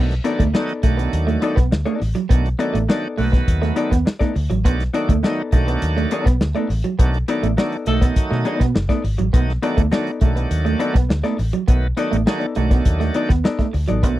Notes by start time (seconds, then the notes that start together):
Already playing: B1 D#3 F#3 A3 D4
0.11 snare, closed hi-hat
0.24 D#3 F#3 A3 B3 D4 D#4 A4 D5, muted clean electric guitar stroke, closed hi-hat
0.39 D2 A3, kick, closed hi-hat
0.53 D#3 F#3 A3 B3 D#4 A4 D5, muted clean electric guitar stroke, snare
0.69 closed hi-hat
0.83 B1 D#3 F#3 A3 D4, muted hollow-body jazz guitar stroke, kick, closed hi-hat
0.97 B3, muted hollow-body jazz guitar stroke, closed hi-hat
1.13 D#2, closed hi-hat
1.27 A3, muted hollow-body jazz guitar stroke, closed hi-hat
1.41 B3 D#4 A4 D5, muted clean electric guitar stroke, closed hi-hat
1.56 B1 B3, muted hollow-body jazz guitar stroke, kick, snare, closed hi-hat
1.71 D2, muted hollow-body jazz guitar stroke, snare
1.85 A3 B3 D#4 A4 D5, closed hi-hat
2.00 A1, muted clean electric guitar stroke, muted hollow-body jazz guitar stroke, snare, open hi-hat
2.15 F#3, muted hollow-body jazz guitar stroke, closed hi-hat
2.29 B1 D#3 F#3 A3 B3 D4, kick, closed hi-hat
2.46 closed hi-hat
2.59 D#3 F#3 A3 B3 D4 D#4 A4 D5, muted clean electric guitar stroke, closed hi-hat
2.74 A1 A3, closed hi-hat
2.88 D#3 F#3 A3 B3 D4 D#4 A4 D5, muted clean electric guitar stroke, snare
3.17 B1 D3 F#3 A3 B3, muted hollow-body jazz guitar stroke, open hi-hat
3.24 D#3
3.32 B3, muted hollow-body jazz guitar stroke, kick, snare, closed hi-hat
3.48 D#2, kick, closed hi-hat
3.62 A3, muted hollow-body jazz guitar stroke, snare, closed hi-hat
3.76 B3 D#4 A4 D5, muted clean electric guitar stroke, closed hi-hat
3.91 D#2 B3, muted hollow-body jazz guitar stroke, kick, snare, closed hi-hat
4.05 muted hollow-body jazz guitar stroke, snare
4.19 A3 B3 D#4 A4 D5, kick, snare, closed hi-hat
4.35 D2, muted hollow-body jazz guitar stroke, muted clean electric guitar stroke, open hi-hat
4.50 A1 F#3, muted hollow-body jazz guitar stroke, closed hi-hat
4.64 B1 D#3 F#3 A3 B3 D4, kick, closed hi-hat
4.80 snare, closed hi-hat
4.94 D#3 F#3 A3 B3 D4 D#4 A4 D5, muted clean electric guitar stroke, closed hi-hat
5.09 D2 A3, kick, closed hi-hat
5.23 D#3 F#3 A3 B3 D#4 A4 D5, muted clean electric guitar stroke, snare
5.52 B1 D#3 F#3 A3 D4, muted hollow-body jazz guitar stroke, kick, closed hi-hat
5.67 B3, muted hollow-body jazz guitar stroke, closed hi-hat
5.82 D#2, closed hi-hat
5.97 A3, muted hollow-body jazz guitar stroke, closed hi-hat
6.11 B3 D#4 A4 D5, muted clean electric guitar stroke, closed hi-hat
6.26 B1 B3, muted hollow-body jazz guitar stroke, kick, snare, closed hi-hat
6.41 D2, muted hollow-body jazz guitar stroke, snare
6.55 A3 B3 D#4 A4 D5, closed hi-hat
6.69 A1, muted clean electric guitar stroke, muted hollow-body jazz guitar stroke, snare, open hi-hat
6.84 F#3, muted hollow-body jazz guitar stroke, closed hi-hat
6.99 B1 D#3 F#3 A3 B3 D4, kick, closed hi-hat
7.14 closed hi-hat
7.28 D#3 F#3 A3 B3 D4 D#4 A4 D5, muted clean electric guitar stroke, closed hi-hat
7.43 A1 A3, closed hi-hat
7.57 D#3 F#3 A3 B3 D4 D#4 A4 D5, muted clean electric guitar stroke, snare
7.72 closed hi-hat
7.86 B1 D#3 F#3 A3 D4 A4, muted hollow-body jazz guitar stroke, closed hi-hat
7.95 D#4
8.01 B3, muted hollow-body jazz guitar stroke, kick, snare, closed hi-hat
8.16 kick, closed hi-hat
8.31 B2 A3, muted hollow-body jazz guitar stroke, snare
8.45 B3 D#4 A4 D5, muted clean electric guitar stroke, closed hi-hat
8.60 B2 B3, muted hollow-body jazz guitar stroke, kick, snare, closed hi-hat
8.74 F#1, muted hollow-body jazz guitar stroke, snare
8.89 A3 B3 D#4 A4 D5, kick, snare, closed hi-hat
9.04 G#1, muted hollow-body jazz guitar stroke, muted clean electric guitar stroke, open hi-hat
9.18 A1 F#3, muted hollow-body jazz guitar stroke, closed hi-hat
9.33 B1 D#3 F#3 A3 B3 D#4, kick, closed hi-hat
9.49 snare
9.62 D#3 F#3 A3 B3 D4 D#4 A4 D5, muted clean electric guitar stroke, closed hi-hat
9.77 D2 A3, kick, closed hi-hat
9.91 D#3 F#3 A3 B3 D4 D#4 A4 D5, muted clean electric guitar stroke, snare
10.07 closed hi-hat
10.21 B1 D#3 F#3 A3 D4, muted hollow-body jazz guitar stroke, kick, closed hi-hat
10.36 B3, muted hollow-body jazz guitar stroke, closed hi-hat
10.51 D#2, closed hi-hat
10.65 A3, muted hollow-body jazz guitar stroke, closed hi-hat
10.79 B3 D#4 A4 D5, muted clean electric guitar stroke, closed hi-hat
10.94 B1 B3, muted hollow-body jazz guitar stroke, kick, snare, closed hi-hat
11.09 D2, muted hollow-body jazz guitar stroke, snare
11.23 A3 B3 D#4 A4 D5, snare, closed hi-hat
11.38 A1, muted hollow-body jazz guitar stroke, muted clean electric guitar stroke, snare, open hi-hat
11.53 F#3, muted hollow-body jazz guitar stroke, closed hi-hat
11.68 B1 D#3 F#3 A3 B3, kick, closed hi-hat
11.97 D#3 F#3 A3 B3 D#4 A4 D5, muted clean electric guitar stroke, closed hi-hat
12.12 A1 A3, closed hi-hat
12.26 D#3 F#3 A3 A#3 D4 G#4 C#5, muted clean electric guitar stroke, snare
12.38 B3 D#4 A4 D5, closed hi-hat
12.55 B1 D#3 F#3 A3 D4, muted hollow-body jazz guitar stroke, closed hi-hat
12.70 B3, muted hollow-body jazz guitar stroke, kick, snare, closed hi-hat
12.85 D#2, kick, closed hi-hat
13.00 A3, muted hollow-body jazz guitar stroke, snare, closed hi-hat
13.14 B3 D#4 A4 D5, muted clean electric guitar stroke, closed hi-hat
13.29 D#2 B3, muted hollow-body jazz guitar stroke, kick, snare, closed hi-hat
13.44 B3 D#4 A4 D5, snare
13.59 A3, kick, snare, closed hi-hat
13.73 D2, muted clean electric guitar stroke, muted hollow-body jazz guitar stroke, open hi-hat
13.88 A1 F#3 B3 D#4 A4 D5, closed hi-hat
14.03 B1 D#3 F#3 A3 B3 D4, kick, closed hi-hat